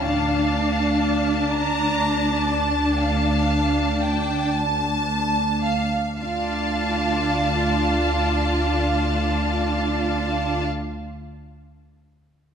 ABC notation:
X:1
M:12/8
L:1/16
Q:3/8=38
K:Dm
V:1 name="Violin section"
a16- a6- a z | a24 |]
V:2 name="Violin section"
f6 b4 a2 f4 g2 a4 f2 | f24 |]
V:3 name="Viola section"
D16- D6- D z | F24 |]
V:4 name="Cello section"
D16- D2 z6 | D24 |]
V:5 name="Double bass section" clef=bass
D,,16- D,,6- D,, z | D,,24 |]